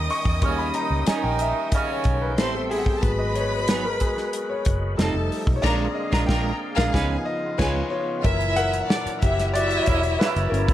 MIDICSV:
0, 0, Header, 1, 9, 480
1, 0, Start_track
1, 0, Tempo, 650759
1, 316, Time_signature, 4, 2, 24, 8
1, 7918, End_track
2, 0, Start_track
2, 0, Title_t, "Violin section"
2, 0, Program_c, 0, 48
2, 0, Note_on_c, 0, 75, 89
2, 0, Note_on_c, 0, 87, 104
2, 1485, Note_off_c, 0, 87, 0
2, 1488, Note_off_c, 0, 75, 0
2, 1754, Note_on_c, 0, 72, 81
2, 1755, Note_on_c, 0, 84, 81
2, 1944, Note_off_c, 0, 72, 0
2, 1945, Note_off_c, 0, 84, 0
2, 1997, Note_on_c, 0, 76, 72
2, 2002, Note_on_c, 0, 64, 61
2, 2057, Note_off_c, 0, 76, 0
2, 2060, Note_off_c, 0, 64, 0
2, 2060, Note_on_c, 0, 66, 70
2, 2063, Note_on_c, 0, 78, 83
2, 2118, Note_on_c, 0, 67, 67
2, 2119, Note_off_c, 0, 66, 0
2, 2120, Note_off_c, 0, 78, 0
2, 2121, Note_on_c, 0, 79, 66
2, 2178, Note_off_c, 0, 67, 0
2, 2180, Note_off_c, 0, 79, 0
2, 2180, Note_on_c, 0, 81, 87
2, 2182, Note_on_c, 0, 69, 76
2, 2235, Note_on_c, 0, 71, 86
2, 2235, Note_on_c, 0, 83, 94
2, 2239, Note_off_c, 0, 81, 0
2, 2240, Note_off_c, 0, 69, 0
2, 3413, Note_off_c, 0, 71, 0
2, 3413, Note_off_c, 0, 83, 0
2, 3673, Note_on_c, 0, 81, 84
2, 3677, Note_on_c, 0, 69, 92
2, 3911, Note_off_c, 0, 81, 0
2, 3913, Note_off_c, 0, 69, 0
2, 4149, Note_on_c, 0, 82, 100
2, 4157, Note_on_c, 0, 70, 96
2, 4317, Note_off_c, 0, 82, 0
2, 4321, Note_off_c, 0, 70, 0
2, 4515, Note_on_c, 0, 82, 91
2, 4516, Note_on_c, 0, 70, 97
2, 4619, Note_off_c, 0, 70, 0
2, 4619, Note_off_c, 0, 82, 0
2, 4636, Note_on_c, 0, 70, 105
2, 4639, Note_on_c, 0, 82, 96
2, 4800, Note_off_c, 0, 70, 0
2, 4802, Note_off_c, 0, 82, 0
2, 4985, Note_on_c, 0, 70, 116
2, 4987, Note_on_c, 0, 82, 111
2, 5093, Note_off_c, 0, 70, 0
2, 5094, Note_off_c, 0, 82, 0
2, 5106, Note_on_c, 0, 68, 103
2, 5109, Note_on_c, 0, 80, 99
2, 5275, Note_off_c, 0, 68, 0
2, 5276, Note_off_c, 0, 80, 0
2, 5592, Note_on_c, 0, 68, 90
2, 5593, Note_on_c, 0, 80, 90
2, 5758, Note_off_c, 0, 68, 0
2, 5759, Note_off_c, 0, 80, 0
2, 6062, Note_on_c, 0, 64, 94
2, 6065, Note_on_c, 0, 76, 123
2, 6521, Note_off_c, 0, 64, 0
2, 6523, Note_off_c, 0, 76, 0
2, 6554, Note_on_c, 0, 62, 86
2, 6554, Note_on_c, 0, 74, 92
2, 6748, Note_off_c, 0, 62, 0
2, 6748, Note_off_c, 0, 74, 0
2, 6798, Note_on_c, 0, 76, 98
2, 6802, Note_on_c, 0, 64, 80
2, 6990, Note_off_c, 0, 76, 0
2, 6993, Note_off_c, 0, 64, 0
2, 7051, Note_on_c, 0, 64, 116
2, 7051, Note_on_c, 0, 76, 123
2, 7735, Note_off_c, 0, 64, 0
2, 7736, Note_off_c, 0, 76, 0
2, 7918, End_track
3, 0, Start_track
3, 0, Title_t, "Grand piano"
3, 0, Program_c, 1, 0
3, 0, Control_c, 1, 64, 127
3, 0, Note_on_c, 1, 55, 51
3, 0, Note_on_c, 1, 58, 47
3, 0, Note_on_c, 1, 61, 54
3, 0, Note_on_c, 1, 76, 86
3, 0, Note_on_c, 1, 79, 101
3, 0, Note_on_c, 1, 80, 77
3, 0, Note_on_c, 1, 82, 105
3, 0, Note_on_c, 1, 83, 98
3, 78, Note_on_c, 1, 85, 106
3, 86, Note_off_c, 1, 83, 0
3, 305, Note_off_c, 1, 85, 0
3, 308, Note_off_c, 1, 55, 0
3, 308, Note_on_c, 1, 55, 55
3, 312, Note_off_c, 1, 58, 0
3, 312, Note_on_c, 1, 58, 46
3, 316, Note_on_c, 1, 85, 93
3, 320, Note_off_c, 1, 61, 0
3, 320, Note_on_c, 1, 61, 61
3, 432, Note_on_c, 1, 83, 92
3, 440, Note_off_c, 1, 85, 0
3, 552, Note_off_c, 1, 82, 0
3, 552, Note_on_c, 1, 82, 101
3, 558, Note_off_c, 1, 83, 0
3, 791, Note_off_c, 1, 80, 0
3, 791, Note_on_c, 1, 80, 92
3, 801, Note_off_c, 1, 82, 0
3, 905, Note_off_c, 1, 80, 0
3, 906, Note_off_c, 1, 79, 0
3, 906, Note_on_c, 1, 79, 84
3, 1033, Note_off_c, 1, 76, 0
3, 1033, Note_on_c, 1, 76, 96
3, 1035, Note_off_c, 1, 79, 0
3, 1282, Note_off_c, 1, 76, 0
3, 1286, Note_on_c, 1, 75, 82
3, 1404, Note_on_c, 1, 73, 72
3, 1405, Note_off_c, 1, 75, 0
3, 1569, Note_off_c, 1, 73, 0
3, 1580, Note_on_c, 1, 73, 58
3, 1634, Note_on_c, 1, 71, 73
3, 1635, Note_off_c, 1, 73, 0
3, 1688, Note_off_c, 1, 71, 0
3, 1724, Note_off_c, 1, 55, 0
3, 1726, Note_off_c, 1, 58, 0
3, 1730, Note_off_c, 1, 61, 0
3, 1755, Note_on_c, 1, 55, 55
3, 1761, Note_on_c, 1, 59, 51
3, 1765, Note_on_c, 1, 60, 71
3, 1766, Control_c, 1, 64, 0
3, 1880, Note_on_c, 1, 69, 77
3, 1911, Control_c, 1, 64, 127
3, 1997, Note_on_c, 1, 68, 105
3, 2002, Note_off_c, 1, 69, 0
3, 2076, Note_off_c, 1, 55, 0
3, 2079, Note_off_c, 1, 59, 0
3, 2081, Note_off_c, 1, 60, 0
3, 2225, Note_on_c, 1, 54, 54
3, 2231, Note_on_c, 1, 56, 49
3, 2233, Note_on_c, 1, 59, 59
3, 2248, Control_c, 1, 64, 0
3, 2349, Note_on_c, 1, 75, 81
3, 2369, Note_off_c, 1, 68, 0
3, 2375, Control_c, 1, 64, 127
3, 2472, Note_on_c, 1, 73, 80
3, 2477, Note_off_c, 1, 75, 0
3, 2550, Note_off_c, 1, 54, 0
3, 2554, Note_off_c, 1, 56, 0
3, 2555, Note_off_c, 1, 59, 0
3, 2718, Note_on_c, 1, 71, 83
3, 2722, Note_off_c, 1, 73, 0
3, 2840, Note_on_c, 1, 70, 76
3, 2842, Note_off_c, 1, 71, 0
3, 2958, Note_on_c, 1, 68, 80
3, 2963, Note_off_c, 1, 70, 0
3, 3293, Note_off_c, 1, 68, 0
3, 3315, Note_on_c, 1, 73, 73
3, 3668, Note_on_c, 1, 55, 62
3, 3670, Note_on_c, 1, 57, 54
3, 3677, Note_on_c, 1, 63, 67
3, 3687, Control_c, 1, 64, 0
3, 3767, Note_off_c, 1, 73, 0
3, 3824, Control_c, 1, 64, 127
3, 4101, Note_on_c, 1, 73, 76
3, 4129, Note_off_c, 1, 55, 0
3, 4130, Note_off_c, 1, 57, 0
3, 4134, Note_off_c, 1, 63, 0
3, 4142, Note_on_c, 1, 56, 55
3, 4146, Note_on_c, 1, 60, 45
3, 4147, Note_on_c, 1, 74, 95
3, 4153, Note_on_c, 1, 50, 63
3, 4156, Note_off_c, 1, 73, 0
3, 4169, Control_c, 1, 64, 0
3, 4275, Control_c, 1, 64, 127
3, 4385, Note_on_c, 1, 75, 88
3, 4400, Note_off_c, 1, 74, 0
3, 4620, Note_on_c, 1, 79, 106
3, 4639, Note_off_c, 1, 75, 0
3, 4841, Note_off_c, 1, 56, 0
3, 4843, Note_off_c, 1, 60, 0
3, 4846, Note_off_c, 1, 50, 0
3, 4989, Note_on_c, 1, 77, 109
3, 5001, Note_off_c, 1, 79, 0
3, 5116, Note_on_c, 1, 53, 53
3, 5121, Note_on_c, 1, 59, 52
3, 5127, Note_on_c, 1, 63, 65
3, 5129, Control_c, 1, 64, 0
3, 5253, Control_c, 1, 64, 127
3, 5350, Note_on_c, 1, 75, 95
3, 5365, Note_off_c, 1, 77, 0
3, 5592, Note_on_c, 1, 71, 91
3, 5595, Note_on_c, 1, 73, 89
3, 5602, Note_off_c, 1, 75, 0
3, 5605, Note_on_c, 1, 65, 74
3, 5817, Note_off_c, 1, 73, 0
3, 5818, Note_off_c, 1, 71, 0
3, 5825, Note_off_c, 1, 65, 0
3, 5828, Note_on_c, 1, 73, 95
3, 5843, Note_on_c, 1, 65, 72
3, 6048, Note_off_c, 1, 53, 0
3, 6051, Note_off_c, 1, 59, 0
3, 6054, Note_off_c, 1, 63, 0
3, 6057, Note_off_c, 1, 73, 0
3, 6064, Note_off_c, 1, 65, 0
3, 6072, Note_on_c, 1, 76, 89
3, 6073, Note_on_c, 1, 52, 54
3, 6077, Note_on_c, 1, 46, 49
3, 6084, Note_on_c, 1, 70, 77
3, 6088, Control_c, 1, 64, 0
3, 6207, Control_c, 1, 64, 127
3, 6299, Note_off_c, 1, 76, 0
3, 6305, Note_off_c, 1, 70, 0
3, 6316, Note_on_c, 1, 78, 122
3, 6329, Note_on_c, 1, 70, 79
3, 6768, Note_off_c, 1, 78, 0
3, 6775, Note_off_c, 1, 70, 0
3, 6795, Note_on_c, 1, 76, 100
3, 6804, Note_on_c, 1, 67, 75
3, 7025, Note_off_c, 1, 67, 0
3, 7033, Note_on_c, 1, 74, 102
3, 7044, Note_on_c, 1, 66, 81
3, 7045, Note_off_c, 1, 76, 0
3, 7265, Note_off_c, 1, 66, 0
3, 7271, Note_on_c, 1, 73, 85
3, 7281, Note_on_c, 1, 64, 71
3, 7283, Note_off_c, 1, 74, 0
3, 7498, Note_off_c, 1, 73, 0
3, 7504, Note_off_c, 1, 64, 0
3, 7515, Note_on_c, 1, 71, 86
3, 7523, Note_on_c, 1, 64, 77
3, 7743, Note_on_c, 1, 70, 80
3, 7745, Note_off_c, 1, 64, 0
3, 7756, Note_on_c, 1, 61, 64
3, 7764, Note_off_c, 1, 71, 0
3, 7918, Note_off_c, 1, 46, 0
3, 7918, Note_off_c, 1, 52, 0
3, 7918, Note_off_c, 1, 61, 0
3, 7918, Note_off_c, 1, 70, 0
3, 7918, End_track
4, 0, Start_track
4, 0, Title_t, "Tonewheel organ"
4, 0, Program_c, 2, 16
4, 0, Note_on_c, 2, 51, 63
4, 0, Note_on_c, 2, 61, 59
4, 0, Note_on_c, 2, 79, 72
4, 293, Note_off_c, 2, 61, 0
4, 306, Note_on_c, 2, 63, 60
4, 1725, Note_off_c, 2, 51, 0
4, 1738, Note_off_c, 2, 63, 0
4, 1752, Note_on_c, 2, 57, 61
4, 1752, Note_on_c, 2, 76, 75
4, 2207, Note_off_c, 2, 79, 0
4, 2222, Note_on_c, 2, 56, 64
4, 2228, Note_on_c, 2, 71, 65
4, 2229, Note_on_c, 2, 66, 58
4, 2230, Note_off_c, 2, 57, 0
4, 2231, Note_off_c, 2, 76, 0
4, 3656, Note_off_c, 2, 56, 0
4, 3659, Note_off_c, 2, 71, 0
4, 3660, Note_off_c, 2, 66, 0
4, 3666, Note_on_c, 2, 63, 55
4, 3671, Note_on_c, 2, 69, 67
4, 3672, Note_on_c, 2, 53, 63
4, 4148, Note_off_c, 2, 63, 0
4, 4150, Note_off_c, 2, 69, 0
4, 4151, Note_off_c, 2, 53, 0
4, 4151, Note_on_c, 2, 58, 68
4, 4151, Note_on_c, 2, 77, 79
4, 4153, Note_on_c, 2, 68, 57
4, 5106, Note_off_c, 2, 58, 0
4, 5106, Note_off_c, 2, 77, 0
4, 5107, Note_off_c, 2, 68, 0
4, 5122, Note_on_c, 2, 59, 65
4, 5122, Note_on_c, 2, 65, 65
4, 5126, Note_on_c, 2, 49, 56
4, 6070, Note_on_c, 2, 82, 74
4, 6071, Note_off_c, 2, 59, 0
4, 6071, Note_off_c, 2, 65, 0
4, 6073, Note_off_c, 2, 49, 0
4, 6073, Note_on_c, 2, 54, 67
4, 6073, Note_on_c, 2, 64, 63
4, 7918, Note_off_c, 2, 54, 0
4, 7918, Note_off_c, 2, 64, 0
4, 7918, Note_off_c, 2, 82, 0
4, 7918, End_track
5, 0, Start_track
5, 0, Title_t, "Clean electric guitar"
5, 0, Program_c, 3, 27
5, 796, Note_on_c, 3, 55, 72
5, 801, Note_on_c, 3, 61, 81
5, 801, Note_on_c, 3, 63, 81
5, 801, Note_on_c, 3, 70, 80
5, 912, Note_off_c, 3, 55, 0
5, 914, Note_off_c, 3, 61, 0
5, 914, Note_off_c, 3, 63, 0
5, 914, Note_off_c, 3, 70, 0
5, 1758, Note_on_c, 3, 55, 80
5, 1759, Note_on_c, 3, 60, 68
5, 1765, Note_on_c, 3, 64, 84
5, 1765, Note_on_c, 3, 69, 79
5, 1873, Note_off_c, 3, 55, 0
5, 1874, Note_off_c, 3, 60, 0
5, 1877, Note_off_c, 3, 64, 0
5, 1877, Note_off_c, 3, 69, 0
5, 2720, Note_on_c, 3, 54, 70
5, 2723, Note_on_c, 3, 59, 67
5, 2727, Note_on_c, 3, 63, 66
5, 2730, Note_on_c, 3, 68, 69
5, 2835, Note_off_c, 3, 54, 0
5, 2836, Note_off_c, 3, 59, 0
5, 2838, Note_off_c, 3, 63, 0
5, 2840, Note_off_c, 3, 68, 0
5, 3677, Note_on_c, 3, 53, 68
5, 3683, Note_on_c, 3, 60, 83
5, 3685, Note_on_c, 3, 63, 80
5, 3686, Note_on_c, 3, 69, 96
5, 3794, Note_off_c, 3, 53, 0
5, 3796, Note_off_c, 3, 60, 0
5, 3797, Note_off_c, 3, 63, 0
5, 3798, Note_off_c, 3, 69, 0
5, 4165, Note_on_c, 3, 56, 84
5, 4168, Note_on_c, 3, 62, 81
5, 4171, Note_on_c, 3, 65, 82
5, 4174, Note_on_c, 3, 70, 82
5, 4326, Note_off_c, 3, 56, 0
5, 4328, Note_off_c, 3, 62, 0
5, 4329, Note_off_c, 3, 65, 0
5, 4331, Note_off_c, 3, 70, 0
5, 4514, Note_on_c, 3, 56, 86
5, 4516, Note_on_c, 3, 62, 97
5, 4519, Note_on_c, 3, 65, 85
5, 4523, Note_on_c, 3, 70, 89
5, 4618, Note_off_c, 3, 56, 0
5, 4620, Note_off_c, 3, 62, 0
5, 4621, Note_off_c, 3, 65, 0
5, 4623, Note_off_c, 3, 70, 0
5, 4632, Note_on_c, 3, 56, 79
5, 4635, Note_on_c, 3, 62, 85
5, 4638, Note_on_c, 3, 65, 92
5, 4641, Note_on_c, 3, 70, 97
5, 4798, Note_off_c, 3, 56, 0
5, 4800, Note_off_c, 3, 62, 0
5, 4801, Note_off_c, 3, 65, 0
5, 4803, Note_off_c, 3, 70, 0
5, 4996, Note_on_c, 3, 56, 93
5, 4999, Note_on_c, 3, 62, 99
5, 5000, Note_on_c, 3, 65, 81
5, 5004, Note_on_c, 3, 70, 83
5, 5099, Note_off_c, 3, 56, 0
5, 5101, Note_off_c, 3, 62, 0
5, 5102, Note_off_c, 3, 65, 0
5, 5104, Note_off_c, 3, 70, 0
5, 5115, Note_on_c, 3, 56, 94
5, 5118, Note_on_c, 3, 61, 104
5, 5122, Note_on_c, 3, 65, 89
5, 5122, Note_on_c, 3, 71, 93
5, 5280, Note_off_c, 3, 56, 0
5, 5281, Note_off_c, 3, 61, 0
5, 5284, Note_off_c, 3, 65, 0
5, 5284, Note_off_c, 3, 71, 0
5, 5597, Note_on_c, 3, 56, 91
5, 5597, Note_on_c, 3, 61, 90
5, 5603, Note_on_c, 3, 65, 93
5, 5606, Note_on_c, 3, 71, 93
5, 5761, Note_off_c, 3, 56, 0
5, 5761, Note_off_c, 3, 61, 0
5, 5764, Note_off_c, 3, 65, 0
5, 5766, Note_off_c, 3, 71, 0
5, 7918, End_track
6, 0, Start_track
6, 0, Title_t, "Horn section"
6, 0, Program_c, 4, 61
6, 319, Note_on_c, 4, 49, 88
6, 319, Note_on_c, 4, 61, 97
6, 510, Note_off_c, 4, 49, 0
6, 510, Note_off_c, 4, 61, 0
6, 561, Note_on_c, 4, 63, 73
6, 562, Note_on_c, 4, 51, 66
6, 752, Note_off_c, 4, 51, 0
6, 752, Note_off_c, 4, 63, 0
6, 796, Note_on_c, 4, 63, 94
6, 798, Note_on_c, 4, 51, 97
6, 1248, Note_off_c, 4, 63, 0
6, 1249, Note_off_c, 4, 51, 0
6, 1278, Note_on_c, 4, 49, 92
6, 1281, Note_on_c, 4, 61, 91
6, 1729, Note_off_c, 4, 49, 0
6, 1731, Note_off_c, 4, 61, 0
6, 7282, Note_on_c, 4, 58, 78
6, 7283, Note_on_c, 4, 64, 83
6, 7285, Note_on_c, 4, 49, 71
6, 7383, Note_off_c, 4, 58, 0
6, 7383, Note_off_c, 4, 64, 0
6, 7384, Note_off_c, 4, 49, 0
6, 7525, Note_on_c, 4, 49, 96
6, 7526, Note_on_c, 4, 58, 91
6, 7526, Note_on_c, 4, 64, 102
6, 7918, Note_off_c, 4, 49, 0
6, 7918, Note_off_c, 4, 58, 0
6, 7918, Note_off_c, 4, 64, 0
6, 7918, End_track
7, 0, Start_track
7, 0, Title_t, "Fingered electric bass"
7, 0, Program_c, 5, 33
7, 187, Note_on_c, 5, 40, 73
7, 309, Note_off_c, 5, 40, 0
7, 309, Note_on_c, 5, 39, 87
7, 519, Note_off_c, 5, 39, 0
7, 666, Note_on_c, 5, 37, 78
7, 774, Note_off_c, 5, 37, 0
7, 913, Note_on_c, 5, 34, 91
7, 1121, Note_off_c, 5, 34, 0
7, 1516, Note_on_c, 5, 35, 85
7, 1752, Note_off_c, 5, 35, 0
7, 1752, Note_on_c, 5, 33, 98
7, 2168, Note_off_c, 5, 33, 0
7, 2233, Note_on_c, 5, 32, 99
7, 3046, Note_off_c, 5, 32, 0
7, 3442, Note_on_c, 5, 30, 84
7, 3648, Note_off_c, 5, 30, 0
7, 3676, Note_on_c, 5, 29, 109
7, 3781, Note_off_c, 5, 29, 0
7, 3791, Note_on_c, 5, 29, 90
7, 3897, Note_off_c, 5, 29, 0
7, 4034, Note_on_c, 5, 35, 83
7, 4140, Note_off_c, 5, 35, 0
7, 4157, Note_on_c, 5, 34, 88
7, 4321, Note_off_c, 5, 34, 0
7, 4518, Note_on_c, 5, 34, 96
7, 4620, Note_off_c, 5, 34, 0
7, 4638, Note_on_c, 5, 34, 106
7, 4801, Note_off_c, 5, 34, 0
7, 4996, Note_on_c, 5, 34, 107
7, 5099, Note_off_c, 5, 34, 0
7, 5120, Note_on_c, 5, 37, 101
7, 5283, Note_off_c, 5, 37, 0
7, 5600, Note_on_c, 5, 37, 109
7, 5763, Note_off_c, 5, 37, 0
7, 6080, Note_on_c, 5, 30, 103
7, 6493, Note_off_c, 5, 30, 0
7, 6805, Note_on_c, 5, 30, 91
7, 7215, Note_off_c, 5, 30, 0
7, 7282, Note_on_c, 5, 28, 91
7, 7487, Note_off_c, 5, 28, 0
7, 7643, Note_on_c, 5, 30, 112
7, 7744, Note_off_c, 5, 30, 0
7, 7757, Note_on_c, 5, 31, 100
7, 7918, Note_off_c, 5, 31, 0
7, 7918, End_track
8, 0, Start_track
8, 0, Title_t, "Muted fingered electric bass strokes"
8, 792, Note_on_c, 9, 29, 47
8, 865, Note_off_c, 9, 29, 0
8, 6679, Note_on_c, 9, 29, 50
8, 6753, Note_off_c, 9, 29, 0
8, 7918, End_track
9, 0, Start_track
9, 0, Title_t, "Drums"
9, 73, Note_on_c, 9, 46, 67
9, 146, Note_off_c, 9, 46, 0
9, 187, Note_on_c, 9, 36, 98
9, 261, Note_off_c, 9, 36, 0
9, 308, Note_on_c, 9, 42, 74
9, 310, Note_on_c, 9, 36, 105
9, 382, Note_off_c, 9, 42, 0
9, 384, Note_off_c, 9, 36, 0
9, 544, Note_on_c, 9, 42, 75
9, 618, Note_off_c, 9, 42, 0
9, 785, Note_on_c, 9, 42, 109
9, 793, Note_on_c, 9, 38, 116
9, 859, Note_off_c, 9, 42, 0
9, 867, Note_off_c, 9, 38, 0
9, 1024, Note_on_c, 9, 42, 66
9, 1098, Note_off_c, 9, 42, 0
9, 1267, Note_on_c, 9, 42, 88
9, 1270, Note_on_c, 9, 36, 97
9, 1341, Note_off_c, 9, 42, 0
9, 1343, Note_off_c, 9, 36, 0
9, 1504, Note_on_c, 9, 42, 70
9, 1514, Note_on_c, 9, 36, 96
9, 1577, Note_off_c, 9, 42, 0
9, 1588, Note_off_c, 9, 36, 0
9, 1755, Note_on_c, 9, 42, 87
9, 1758, Note_on_c, 9, 38, 106
9, 1829, Note_off_c, 9, 42, 0
9, 1832, Note_off_c, 9, 38, 0
9, 2001, Note_on_c, 9, 46, 60
9, 2074, Note_off_c, 9, 46, 0
9, 2111, Note_on_c, 9, 36, 95
9, 2185, Note_off_c, 9, 36, 0
9, 2232, Note_on_c, 9, 42, 84
9, 2234, Note_on_c, 9, 36, 111
9, 2306, Note_off_c, 9, 42, 0
9, 2308, Note_off_c, 9, 36, 0
9, 2474, Note_on_c, 9, 42, 80
9, 2548, Note_off_c, 9, 42, 0
9, 2712, Note_on_c, 9, 42, 97
9, 2720, Note_on_c, 9, 38, 119
9, 2785, Note_off_c, 9, 42, 0
9, 2793, Note_off_c, 9, 38, 0
9, 2951, Note_on_c, 9, 42, 70
9, 2958, Note_on_c, 9, 36, 67
9, 3024, Note_off_c, 9, 42, 0
9, 3032, Note_off_c, 9, 36, 0
9, 3077, Note_on_c, 9, 38, 35
9, 3150, Note_off_c, 9, 38, 0
9, 3195, Note_on_c, 9, 42, 91
9, 3269, Note_off_c, 9, 42, 0
9, 3429, Note_on_c, 9, 42, 78
9, 3439, Note_on_c, 9, 36, 102
9, 3503, Note_off_c, 9, 42, 0
9, 3513, Note_off_c, 9, 36, 0
9, 3679, Note_on_c, 9, 42, 88
9, 3682, Note_on_c, 9, 38, 107
9, 3753, Note_off_c, 9, 42, 0
9, 3756, Note_off_c, 9, 38, 0
9, 3924, Note_on_c, 9, 46, 58
9, 3997, Note_off_c, 9, 46, 0
9, 4035, Note_on_c, 9, 36, 105
9, 4109, Note_off_c, 9, 36, 0
9, 4158, Note_on_c, 9, 36, 103
9, 4159, Note_on_c, 9, 49, 78
9, 4164, Note_on_c, 9, 38, 104
9, 4232, Note_off_c, 9, 36, 0
9, 4233, Note_off_c, 9, 49, 0
9, 4238, Note_off_c, 9, 38, 0
9, 4519, Note_on_c, 9, 36, 109
9, 4525, Note_on_c, 9, 38, 113
9, 4593, Note_off_c, 9, 36, 0
9, 4598, Note_off_c, 9, 38, 0
9, 4638, Note_on_c, 9, 36, 113
9, 4640, Note_on_c, 9, 38, 112
9, 4712, Note_off_c, 9, 36, 0
9, 4714, Note_off_c, 9, 38, 0
9, 4999, Note_on_c, 9, 36, 97
9, 5005, Note_on_c, 9, 38, 110
9, 5072, Note_off_c, 9, 36, 0
9, 5078, Note_off_c, 9, 38, 0
9, 5119, Note_on_c, 9, 36, 111
9, 5126, Note_on_c, 9, 38, 114
9, 5193, Note_off_c, 9, 36, 0
9, 5200, Note_off_c, 9, 38, 0
9, 5600, Note_on_c, 9, 36, 103
9, 5601, Note_on_c, 9, 49, 78
9, 5605, Note_on_c, 9, 38, 96
9, 5674, Note_off_c, 9, 36, 0
9, 5675, Note_off_c, 9, 49, 0
9, 5679, Note_off_c, 9, 38, 0
9, 6080, Note_on_c, 9, 42, 84
9, 6081, Note_on_c, 9, 36, 101
9, 6154, Note_off_c, 9, 42, 0
9, 6155, Note_off_c, 9, 36, 0
9, 6200, Note_on_c, 9, 42, 51
9, 6274, Note_off_c, 9, 42, 0
9, 6317, Note_on_c, 9, 42, 78
9, 6391, Note_off_c, 9, 42, 0
9, 6442, Note_on_c, 9, 42, 55
9, 6516, Note_off_c, 9, 42, 0
9, 6567, Note_on_c, 9, 38, 126
9, 6641, Note_off_c, 9, 38, 0
9, 6687, Note_on_c, 9, 42, 57
9, 6761, Note_off_c, 9, 42, 0
9, 6802, Note_on_c, 9, 42, 72
9, 6805, Note_on_c, 9, 36, 84
9, 6876, Note_off_c, 9, 42, 0
9, 6878, Note_off_c, 9, 36, 0
9, 6928, Note_on_c, 9, 38, 39
9, 6928, Note_on_c, 9, 42, 54
9, 7002, Note_off_c, 9, 38, 0
9, 7002, Note_off_c, 9, 42, 0
9, 7047, Note_on_c, 9, 42, 89
9, 7120, Note_off_c, 9, 42, 0
9, 7159, Note_on_c, 9, 42, 53
9, 7232, Note_off_c, 9, 42, 0
9, 7273, Note_on_c, 9, 42, 69
9, 7284, Note_on_c, 9, 36, 102
9, 7347, Note_off_c, 9, 42, 0
9, 7358, Note_off_c, 9, 36, 0
9, 7400, Note_on_c, 9, 42, 53
9, 7474, Note_off_c, 9, 42, 0
9, 7533, Note_on_c, 9, 38, 120
9, 7607, Note_off_c, 9, 38, 0
9, 7644, Note_on_c, 9, 42, 53
9, 7718, Note_off_c, 9, 42, 0
9, 7773, Note_on_c, 9, 42, 61
9, 7847, Note_off_c, 9, 42, 0
9, 7881, Note_on_c, 9, 36, 120
9, 7884, Note_on_c, 9, 42, 51
9, 7918, Note_off_c, 9, 36, 0
9, 7918, Note_off_c, 9, 42, 0
9, 7918, End_track
0, 0, End_of_file